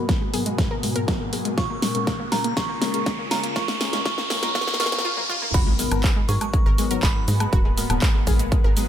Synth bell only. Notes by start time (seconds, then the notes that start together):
Already playing: B5
1.58 C#6
2.32 A#5
2.57 C#6
3.31 A#5
3.56 C#6
4.06 C#6
4.55 C#6
4.80 C#6
5.54 B5
6.29 C#6
7.03 B5